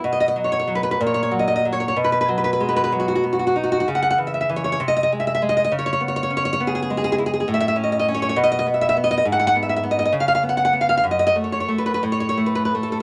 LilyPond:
\new Staff \with { instrumentName = "Nylon-string guitar" } { \time 6/8 \key b \major \tempo 4. = 65 << { r32 dis''32 dis''32 dis''32 r32 cis''32 cis''32 cis''32 r32 b'32 b'32 b'32 r32 cis''32 cis''32 cis''32 r32 dis''32 dis''32 dis''32 r32 cis''32 cis''32 cis''32 | r32 b'32 b'32 b'32 r32 b'32 b'32 b'32 r32 b'32 b'32 b'32 r32 fis'32 fis'32 fis'32 r32 fis'32 fis'32 fis'32 r32 fis'32 fis'32 fis'32 | r32 fis''32 fis''32 fis''32 r32 e''32 e''32 e''32 r32 cis''32 cis''32 cis''32 r32 dis''32 dis''32 dis''32 r32 e''32 e''32 e''32 r32 dis''32 dis''32 dis''32 | r32 cis''32 cis''32 cis''32 r32 cis''32 cis''32 cis''32 r32 cis''32 cis''32 cis''32 r32 gis'32 gis'32 gis'32 r32 gis'32 gis'32 gis'32 r32 gis'32 gis'32 gis'32 |
\key fis \dorian r32 e''32 e''32 e''32 r32 dis''32 dis''32 dis''32 r32 cis''32 cis''32 cis''32 r32 dis''32 dis''32 dis''32 r32 e''32 e''32 e''32 r32 dis''32 dis''32 dis''32 | r32 fis''32 fis''32 fis''32 r32 e''32 e''32 e''32 r32 dis''32 dis''32 dis''32 r32 eis''32 eis''32 eis''32 r32 fis''32 fis''32 fis''32 r32 eis''32 eis''32 eis''32 | r32 dis''32 dis''32 dis''32 r32 cis''32 cis''32 cis''32 r32 b'32 b'32 b'32 r32 cis''32 cis''32 cis''32 r32 b'32 b'32 b'32 r32 a'32 a'32 r32 | } \\ { b,8 fis8 fis8 ais,8 fis8 fis8 | b,8 fis8 gis8 fis8 b8 dis'8 | cis8 e8 e8 bis,8 gis8 gis8 | cis8 b8 cis'8 b8 gis8 e'8 |
a,8 cis'8 cis'8 b,8 b8 b8 | gis,8 b8 b8 cis8 b8 b8 | fis,8 a8 a8 a,8 a8 a8 | } >> }